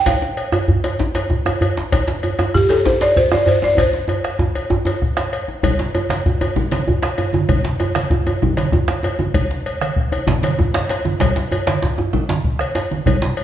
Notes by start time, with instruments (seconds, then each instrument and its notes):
0.06 balafon F5, bombo low, cowbell, djembe slap, djembe bass
0.22 djembe slap
0.37 cowbell
0.52 bombo rim, cowbell, djembe tone
0.68 bombo low, djembe bass
0.84 cowbell, djembe slap
0.99 bombo rim, djembe slap, djembe bass
1.15 cowbell, djembe slap
1.30 bombo rim, bombo low, djembe slap, djembe tone
1.46 bombo rim, cowbell, djembe tone
1.61 bombo rim, cowbell, djembe bass
1.77 djembe slap, djembe tone
1.92 bombo low, cowbell, djembe slap, djembe bass
2.08 djembe slap
2.23 cowbell, djembe tone
2.39 bombo rim, cowbell, djembe tone
2.54 balafon G4, bombo low, djembe bass
2.69 balafon A4, cowbell, djembe slap, djembe tone
2.85 balafon C5, bombo rim, djembe slap, djembe bass
3.01 balafon D5, cowbell, djembe slap
3.16 balafon C5, bombo rim, bombo low, djembe slap, djembe tone
3.32 balafon D5, bombo rim, cowbell, djembe tone
3.45 balafon C5 D5, bombo rim, cowbell, djembe bass
3.62 balafon D5, djembe slap, djembe tone
3.77 balafon C5, bombo rim, bombo low, cowbell, djembe slap, djembe tone, djembe bass
3.93 djembe slap
4.08 cowbell, djembe tone
4.24 bombo rim, cowbell
4.39 bombo rim, bombo low, djembe tone
4.55 cowbell, djembe tone
4.70 djembe slap, djembe tone, djembe bass
4.85 cowbell, djembe slap, djembe tone
5.02 bombo rim, bombo low
5.17 bombo rim, cowbell, djembe slap
5.33 cowbell, djembe slap
5.48 djembe tone
5.63 bombo low, cowbell, low conga, djembe bass
5.79 djembe slap
5.95 cowbell, djembe tone
6.09 bombo rim, cowbell, djembe slap, high conga
6.26 bombo low, djembe tone
6.41 cowbell, djembe tone
6.56 bombo rim, high conga, low conga, djembe bass
6.71 cowbell, djembe slap, high conga
6.88 bombo low, djembe slap, djembe tone
7.02 bombo rim, cowbell, djembe slap, high conga
7.18 bombo rim, cowbell, djembe tone
7.33 high conga, djembe tone
7.49 bombo low, cowbell, low conga, djembe bass
7.65 djembe slap
7.80 cowbell, djembe tone
7.95 bombo rim, cowbell, djembe slap, high conga
8.10 bombo low, djembe tone
8.27 cowbell, djembe tone
8.42 bombo rim, high conga, low conga, djembe bass
8.57 cowbell, djembe slap, high conga
8.72 bombo rim, bombo low, djembe slap, djembe tone
8.88 bombo rim, cowbell, djembe slap, high conga
9.03 bombo rim, cowbell, djembe tone
9.19 djembe tone, high conga
9.34 bombo low, cowbell, low conga, djembe bass
9.51 djembe slap
9.66 cowbell
9.81 bombo rim, cowbell, high conga
9.96 bombo low
10.12 cowbell, djembe tone
10.27 bombo rim, djembe slap, high conga, djembe bass, low conga
10.43 cowbell, djembe slap, high conga
10.59 bombo rim, bombo low, djembe slap, djembe tone
10.74 bombo rim, cowbell, djembe slap, high conga
10.89 bombo rim, cowbell, djembe slap
11.05 djembe tone, high conga
11.20 bombo low, cowbell, djembe slap, high conga, low conga, djembe bass
11.36 djembe slap
11.51 cowbell, high conga, djembe tone
11.67 bombo rim, cowbell, djembe slap, high conga
11.82 bombo low, djembe slap
11.98 bombo rim, djembe tone
12.13 low conga, djembe bass
12.29 djembe slap, high conga
12.44 bombo low
12.59 bombo rim, cowbell
12.75 cowbell, djembe slap
12.91 djembe slap, high conga, djembe tone
13.06 bombo low, cowbell, low conga, djembe bass
13.22 djembe slap
13.37 cowbell